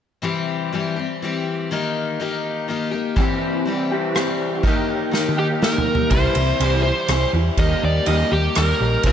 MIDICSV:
0, 0, Header, 1, 6, 480
1, 0, Start_track
1, 0, Tempo, 490196
1, 226, Time_signature, 3, 2, 24, 8
1, 8934, End_track
2, 0, Start_track
2, 0, Title_t, "Lead electric guitar"
2, 0, Program_c, 0, 29
2, 5278, Note_on_c, 0, 67, 67
2, 5341, Note_off_c, 0, 67, 0
2, 5519, Note_on_c, 0, 70, 78
2, 5982, Note_off_c, 0, 70, 0
2, 5986, Note_on_c, 0, 72, 81
2, 6667, Note_off_c, 0, 72, 0
2, 6687, Note_on_c, 0, 72, 78
2, 7142, Note_off_c, 0, 72, 0
2, 7437, Note_on_c, 0, 75, 86
2, 7655, Note_off_c, 0, 75, 0
2, 7682, Note_on_c, 0, 74, 84
2, 7897, Note_off_c, 0, 74, 0
2, 7909, Note_on_c, 0, 75, 81
2, 8130, Note_off_c, 0, 75, 0
2, 8147, Note_on_c, 0, 67, 73
2, 8393, Note_off_c, 0, 67, 0
2, 8396, Note_on_c, 0, 70, 71
2, 8883, Note_off_c, 0, 70, 0
2, 8887, Note_on_c, 0, 72, 76
2, 8934, Note_off_c, 0, 72, 0
2, 8934, End_track
3, 0, Start_track
3, 0, Title_t, "Twelve-string acoustic guitar"
3, 0, Program_c, 1, 25
3, 215, Note_on_c, 1, 48, 63
3, 223, Note_on_c, 1, 52, 71
3, 230, Note_on_c, 1, 55, 62
3, 232, Note_on_c, 1, 60, 61
3, 240, Note_on_c, 1, 67, 68
3, 698, Note_off_c, 1, 52, 0
3, 702, Note_off_c, 1, 48, 0
3, 709, Note_on_c, 1, 52, 49
3, 710, Note_off_c, 1, 60, 0
3, 715, Note_off_c, 1, 55, 0
3, 719, Note_on_c, 1, 55, 51
3, 730, Note_on_c, 1, 60, 52
3, 734, Note_off_c, 1, 67, 0
3, 738, Note_on_c, 1, 67, 52
3, 930, Note_off_c, 1, 67, 0
3, 942, Note_on_c, 1, 67, 39
3, 947, Note_off_c, 1, 60, 0
3, 949, Note_off_c, 1, 52, 0
3, 954, Note_off_c, 1, 55, 0
3, 959, Note_on_c, 1, 60, 38
3, 972, Note_on_c, 1, 55, 33
3, 1185, Note_off_c, 1, 67, 0
3, 1190, Note_off_c, 1, 55, 0
3, 1194, Note_off_c, 1, 60, 0
3, 1197, Note_on_c, 1, 52, 51
3, 1202, Note_on_c, 1, 55, 47
3, 1214, Note_on_c, 1, 60, 53
3, 1221, Note_on_c, 1, 67, 58
3, 1669, Note_off_c, 1, 52, 0
3, 1673, Note_on_c, 1, 51, 65
3, 1678, Note_off_c, 1, 55, 0
3, 1682, Note_off_c, 1, 60, 0
3, 1682, Note_on_c, 1, 58, 70
3, 1690, Note_on_c, 1, 63, 65
3, 1693, Note_off_c, 1, 67, 0
3, 1697, Note_on_c, 1, 67, 72
3, 2140, Note_off_c, 1, 51, 0
3, 2147, Note_off_c, 1, 58, 0
3, 2152, Note_on_c, 1, 51, 56
3, 2155, Note_off_c, 1, 63, 0
3, 2158, Note_on_c, 1, 58, 55
3, 2167, Note_on_c, 1, 63, 60
3, 2169, Note_off_c, 1, 67, 0
3, 2173, Note_on_c, 1, 67, 58
3, 2612, Note_off_c, 1, 51, 0
3, 2617, Note_off_c, 1, 58, 0
3, 2623, Note_on_c, 1, 51, 47
3, 2629, Note_off_c, 1, 63, 0
3, 2629, Note_on_c, 1, 58, 52
3, 2641, Note_on_c, 1, 63, 52
3, 2646, Note_off_c, 1, 67, 0
3, 2650, Note_on_c, 1, 67, 55
3, 2840, Note_off_c, 1, 67, 0
3, 2851, Note_on_c, 1, 67, 42
3, 2854, Note_off_c, 1, 63, 0
3, 2866, Note_off_c, 1, 58, 0
3, 2866, Note_on_c, 1, 63, 37
3, 2867, Note_off_c, 1, 51, 0
3, 2878, Note_on_c, 1, 58, 37
3, 3093, Note_on_c, 1, 52, 65
3, 3096, Note_on_c, 1, 48, 66
3, 3098, Note_off_c, 1, 58, 0
3, 3101, Note_off_c, 1, 67, 0
3, 3101, Note_on_c, 1, 55, 73
3, 3107, Note_off_c, 1, 63, 0
3, 3111, Note_on_c, 1, 60, 77
3, 3113, Note_on_c, 1, 67, 75
3, 3567, Note_off_c, 1, 52, 0
3, 3579, Note_on_c, 1, 52, 52
3, 3583, Note_off_c, 1, 48, 0
3, 3588, Note_off_c, 1, 55, 0
3, 3591, Note_off_c, 1, 60, 0
3, 3592, Note_on_c, 1, 55, 55
3, 3602, Note_off_c, 1, 67, 0
3, 3605, Note_on_c, 1, 60, 57
3, 3606, Note_on_c, 1, 67, 57
3, 4048, Note_off_c, 1, 52, 0
3, 4060, Note_on_c, 1, 52, 52
3, 4061, Note_off_c, 1, 55, 0
3, 4065, Note_on_c, 1, 55, 57
3, 4068, Note_off_c, 1, 60, 0
3, 4077, Note_off_c, 1, 67, 0
3, 4080, Note_on_c, 1, 60, 61
3, 4081, Note_on_c, 1, 67, 52
3, 4531, Note_off_c, 1, 52, 0
3, 4535, Note_on_c, 1, 51, 67
3, 4539, Note_off_c, 1, 55, 0
3, 4543, Note_off_c, 1, 60, 0
3, 4543, Note_on_c, 1, 58, 77
3, 4547, Note_on_c, 1, 63, 66
3, 4549, Note_off_c, 1, 67, 0
3, 4553, Note_on_c, 1, 67, 68
3, 4995, Note_off_c, 1, 51, 0
3, 5007, Note_on_c, 1, 51, 59
3, 5012, Note_off_c, 1, 58, 0
3, 5015, Note_off_c, 1, 63, 0
3, 5023, Note_off_c, 1, 67, 0
3, 5024, Note_on_c, 1, 58, 57
3, 5027, Note_on_c, 1, 63, 61
3, 5035, Note_on_c, 1, 67, 68
3, 5489, Note_off_c, 1, 51, 0
3, 5495, Note_off_c, 1, 58, 0
3, 5501, Note_on_c, 1, 51, 57
3, 5502, Note_off_c, 1, 63, 0
3, 5507, Note_on_c, 1, 58, 55
3, 5512, Note_off_c, 1, 67, 0
3, 5513, Note_on_c, 1, 63, 56
3, 5523, Note_on_c, 1, 67, 53
3, 5974, Note_on_c, 1, 48, 60
3, 5977, Note_off_c, 1, 58, 0
3, 5978, Note_off_c, 1, 51, 0
3, 5981, Note_on_c, 1, 55, 66
3, 5982, Note_off_c, 1, 67, 0
3, 5982, Note_on_c, 1, 52, 62
3, 5985, Note_off_c, 1, 63, 0
3, 5989, Note_on_c, 1, 64, 64
3, 5994, Note_on_c, 1, 67, 66
3, 6453, Note_off_c, 1, 52, 0
3, 6461, Note_off_c, 1, 48, 0
3, 6465, Note_on_c, 1, 52, 50
3, 6468, Note_off_c, 1, 64, 0
3, 6472, Note_off_c, 1, 55, 0
3, 6476, Note_on_c, 1, 55, 47
3, 6484, Note_on_c, 1, 64, 53
3, 6491, Note_off_c, 1, 67, 0
3, 6495, Note_on_c, 1, 67, 55
3, 6686, Note_off_c, 1, 67, 0
3, 6697, Note_on_c, 1, 67, 44
3, 6698, Note_off_c, 1, 64, 0
3, 6706, Note_off_c, 1, 52, 0
3, 6708, Note_off_c, 1, 55, 0
3, 6710, Note_on_c, 1, 64, 35
3, 6720, Note_on_c, 1, 55, 33
3, 6920, Note_on_c, 1, 52, 46
3, 6924, Note_off_c, 1, 55, 0
3, 6930, Note_off_c, 1, 64, 0
3, 6933, Note_off_c, 1, 67, 0
3, 6936, Note_on_c, 1, 55, 53
3, 6941, Note_on_c, 1, 64, 48
3, 6945, Note_on_c, 1, 67, 55
3, 7413, Note_off_c, 1, 52, 0
3, 7421, Note_on_c, 1, 51, 66
3, 7422, Note_off_c, 1, 55, 0
3, 7423, Note_off_c, 1, 64, 0
3, 7426, Note_on_c, 1, 55, 58
3, 7426, Note_on_c, 1, 58, 67
3, 7434, Note_off_c, 1, 67, 0
3, 7434, Note_on_c, 1, 63, 62
3, 7438, Note_on_c, 1, 67, 75
3, 7884, Note_off_c, 1, 55, 0
3, 7887, Note_on_c, 1, 55, 51
3, 7890, Note_off_c, 1, 58, 0
3, 7899, Note_off_c, 1, 63, 0
3, 7902, Note_on_c, 1, 58, 49
3, 7903, Note_off_c, 1, 51, 0
3, 7910, Note_on_c, 1, 63, 51
3, 7914, Note_off_c, 1, 67, 0
3, 7918, Note_on_c, 1, 67, 57
3, 8131, Note_off_c, 1, 67, 0
3, 8136, Note_off_c, 1, 55, 0
3, 8139, Note_off_c, 1, 63, 0
3, 8142, Note_on_c, 1, 67, 40
3, 8143, Note_off_c, 1, 58, 0
3, 8151, Note_on_c, 1, 63, 39
3, 8165, Note_on_c, 1, 58, 33
3, 8374, Note_off_c, 1, 58, 0
3, 8378, Note_on_c, 1, 55, 46
3, 8381, Note_off_c, 1, 63, 0
3, 8383, Note_off_c, 1, 67, 0
3, 8386, Note_on_c, 1, 58, 46
3, 8393, Note_on_c, 1, 63, 49
3, 8404, Note_on_c, 1, 67, 52
3, 8864, Note_off_c, 1, 58, 0
3, 8868, Note_off_c, 1, 63, 0
3, 8869, Note_on_c, 1, 48, 65
3, 8870, Note_off_c, 1, 55, 0
3, 8874, Note_on_c, 1, 55, 61
3, 8877, Note_on_c, 1, 64, 75
3, 8879, Note_on_c, 1, 60, 69
3, 8883, Note_off_c, 1, 67, 0
3, 8887, Note_on_c, 1, 67, 72
3, 8934, Note_off_c, 1, 48, 0
3, 8934, Note_off_c, 1, 55, 0
3, 8934, Note_off_c, 1, 60, 0
3, 8934, Note_off_c, 1, 64, 0
3, 8934, Note_off_c, 1, 67, 0
3, 8934, End_track
4, 0, Start_track
4, 0, Title_t, "Clean electric guitar"
4, 0, Program_c, 2, 27
4, 3107, Note_on_c, 2, 48, 76
4, 3115, Note_on_c, 2, 52, 75
4, 3127, Note_on_c, 2, 55, 77
4, 3133, Note_on_c, 2, 60, 82
4, 3142, Note_on_c, 2, 67, 84
4, 3814, Note_off_c, 2, 48, 0
4, 3819, Note_off_c, 2, 52, 0
4, 3825, Note_off_c, 2, 67, 0
4, 3828, Note_off_c, 2, 60, 0
4, 3829, Note_on_c, 2, 67, 68
4, 3838, Note_on_c, 2, 60, 73
4, 3842, Note_off_c, 2, 55, 0
4, 3846, Note_on_c, 2, 55, 60
4, 3853, Note_on_c, 2, 52, 60
4, 3862, Note_on_c, 2, 48, 54
4, 4526, Note_off_c, 2, 52, 0
4, 4530, Note_on_c, 2, 51, 78
4, 4540, Note_off_c, 2, 60, 0
4, 4544, Note_off_c, 2, 55, 0
4, 4548, Note_on_c, 2, 58, 78
4, 4552, Note_off_c, 2, 48, 0
4, 4560, Note_on_c, 2, 63, 81
4, 4566, Note_off_c, 2, 67, 0
4, 4570, Note_on_c, 2, 67, 86
4, 5245, Note_off_c, 2, 51, 0
4, 5249, Note_off_c, 2, 67, 0
4, 5254, Note_off_c, 2, 58, 0
4, 5260, Note_on_c, 2, 67, 78
4, 5261, Note_off_c, 2, 63, 0
4, 5276, Note_on_c, 2, 63, 59
4, 5288, Note_on_c, 2, 58, 57
4, 5299, Note_on_c, 2, 51, 56
4, 5970, Note_off_c, 2, 67, 0
4, 5978, Note_off_c, 2, 63, 0
4, 5984, Note_off_c, 2, 58, 0
4, 5984, Note_on_c, 2, 48, 70
4, 5986, Note_off_c, 2, 51, 0
4, 5990, Note_on_c, 2, 52, 80
4, 6000, Note_on_c, 2, 55, 86
4, 6212, Note_off_c, 2, 48, 0
4, 6215, Note_off_c, 2, 52, 0
4, 6220, Note_off_c, 2, 55, 0
4, 6232, Note_on_c, 2, 48, 49
4, 6236, Note_on_c, 2, 52, 63
4, 6446, Note_off_c, 2, 48, 0
4, 6448, Note_off_c, 2, 52, 0
4, 6463, Note_on_c, 2, 48, 78
4, 6473, Note_on_c, 2, 52, 76
4, 6480, Note_on_c, 2, 55, 83
4, 6691, Note_off_c, 2, 48, 0
4, 6696, Note_off_c, 2, 52, 0
4, 6699, Note_off_c, 2, 55, 0
4, 6717, Note_on_c, 2, 48, 57
4, 6723, Note_on_c, 2, 52, 64
4, 6928, Note_off_c, 2, 48, 0
4, 6931, Note_off_c, 2, 52, 0
4, 6946, Note_on_c, 2, 48, 59
4, 6953, Note_on_c, 2, 52, 67
4, 7162, Note_off_c, 2, 48, 0
4, 7166, Note_off_c, 2, 52, 0
4, 7186, Note_on_c, 2, 48, 56
4, 7194, Note_on_c, 2, 52, 61
4, 7402, Note_off_c, 2, 48, 0
4, 7406, Note_off_c, 2, 52, 0
4, 7427, Note_on_c, 2, 51, 73
4, 7430, Note_on_c, 2, 55, 71
4, 7437, Note_on_c, 2, 58, 88
4, 7650, Note_off_c, 2, 55, 0
4, 7652, Note_off_c, 2, 51, 0
4, 7657, Note_off_c, 2, 58, 0
4, 7662, Note_on_c, 2, 51, 54
4, 7662, Note_on_c, 2, 55, 61
4, 7879, Note_off_c, 2, 55, 0
4, 7880, Note_off_c, 2, 51, 0
4, 7906, Note_on_c, 2, 51, 77
4, 7914, Note_on_c, 2, 55, 76
4, 7923, Note_on_c, 2, 58, 87
4, 8131, Note_off_c, 2, 51, 0
4, 8135, Note_off_c, 2, 55, 0
4, 8139, Note_off_c, 2, 58, 0
4, 8151, Note_on_c, 2, 51, 54
4, 8153, Note_on_c, 2, 55, 68
4, 8364, Note_off_c, 2, 51, 0
4, 8364, Note_off_c, 2, 55, 0
4, 8389, Note_on_c, 2, 51, 52
4, 8395, Note_on_c, 2, 55, 66
4, 8602, Note_off_c, 2, 51, 0
4, 8605, Note_off_c, 2, 55, 0
4, 8626, Note_on_c, 2, 51, 56
4, 8632, Note_on_c, 2, 55, 59
4, 8841, Note_off_c, 2, 51, 0
4, 8843, Note_off_c, 2, 55, 0
4, 8852, Note_on_c, 2, 48, 72
4, 8866, Note_on_c, 2, 55, 80
4, 8868, Note_on_c, 2, 60, 84
4, 8934, Note_off_c, 2, 48, 0
4, 8934, Note_off_c, 2, 55, 0
4, 8934, Note_off_c, 2, 60, 0
4, 8934, End_track
5, 0, Start_track
5, 0, Title_t, "Fingered electric bass"
5, 0, Program_c, 3, 33
5, 5977, Note_on_c, 3, 36, 78
5, 6129, Note_off_c, 3, 36, 0
5, 6225, Note_on_c, 3, 36, 68
5, 6374, Note_off_c, 3, 36, 0
5, 6462, Note_on_c, 3, 36, 71
5, 6759, Note_off_c, 3, 36, 0
5, 6938, Note_on_c, 3, 36, 72
5, 7089, Note_off_c, 3, 36, 0
5, 7180, Note_on_c, 3, 40, 74
5, 7330, Note_off_c, 3, 40, 0
5, 7416, Note_on_c, 3, 39, 76
5, 7567, Note_off_c, 3, 39, 0
5, 7671, Note_on_c, 3, 39, 72
5, 7817, Note_off_c, 3, 39, 0
5, 7902, Note_on_c, 3, 39, 72
5, 8051, Note_off_c, 3, 39, 0
5, 8145, Note_on_c, 3, 39, 71
5, 8293, Note_off_c, 3, 39, 0
5, 8389, Note_on_c, 3, 39, 75
5, 8536, Note_off_c, 3, 39, 0
5, 8621, Note_on_c, 3, 34, 73
5, 8769, Note_off_c, 3, 34, 0
5, 8853, Note_on_c, 3, 36, 78
5, 8934, Note_off_c, 3, 36, 0
5, 8934, End_track
6, 0, Start_track
6, 0, Title_t, "Drums"
6, 3101, Note_on_c, 9, 36, 80
6, 3199, Note_off_c, 9, 36, 0
6, 4071, Note_on_c, 9, 37, 68
6, 4169, Note_off_c, 9, 37, 0
6, 4539, Note_on_c, 9, 36, 82
6, 4637, Note_off_c, 9, 36, 0
6, 5029, Note_on_c, 9, 38, 44
6, 5127, Note_off_c, 9, 38, 0
6, 5177, Note_on_c, 9, 48, 43
6, 5275, Note_off_c, 9, 48, 0
6, 5508, Note_on_c, 9, 38, 56
6, 5606, Note_off_c, 9, 38, 0
6, 5662, Note_on_c, 9, 43, 68
6, 5760, Note_off_c, 9, 43, 0
6, 5826, Note_on_c, 9, 43, 64
6, 5924, Note_off_c, 9, 43, 0
6, 5978, Note_on_c, 9, 51, 53
6, 5981, Note_on_c, 9, 36, 89
6, 6076, Note_off_c, 9, 51, 0
6, 6079, Note_off_c, 9, 36, 0
6, 6217, Note_on_c, 9, 51, 53
6, 6315, Note_off_c, 9, 51, 0
6, 6467, Note_on_c, 9, 51, 50
6, 6565, Note_off_c, 9, 51, 0
6, 6937, Note_on_c, 9, 51, 50
6, 6946, Note_on_c, 9, 37, 73
6, 7035, Note_off_c, 9, 51, 0
6, 7044, Note_off_c, 9, 37, 0
6, 7417, Note_on_c, 9, 51, 46
6, 7418, Note_on_c, 9, 36, 89
6, 7515, Note_off_c, 9, 51, 0
6, 7516, Note_off_c, 9, 36, 0
6, 7894, Note_on_c, 9, 51, 49
6, 7992, Note_off_c, 9, 51, 0
6, 8375, Note_on_c, 9, 51, 55
6, 8384, Note_on_c, 9, 37, 71
6, 8473, Note_off_c, 9, 51, 0
6, 8482, Note_off_c, 9, 37, 0
6, 8846, Note_on_c, 9, 51, 53
6, 8852, Note_on_c, 9, 36, 85
6, 8934, Note_off_c, 9, 36, 0
6, 8934, Note_off_c, 9, 51, 0
6, 8934, End_track
0, 0, End_of_file